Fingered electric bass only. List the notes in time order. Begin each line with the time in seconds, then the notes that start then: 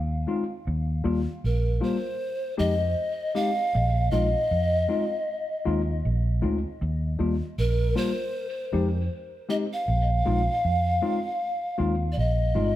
Already playing: D#2
0.67 D#2
1.05 D#2
1.44 A#1
2.60 F2
3.75 A#1
4.13 A#1
4.51 F2
5.67 D#2
6.05 A#1
6.43 D2
6.82 D#2
7.20 D#2
7.58 A#1
8.74 F2
9.88 A#1
10.27 A#1
10.65 F2
11.80 D#2
12.17 A#1
12.56 G1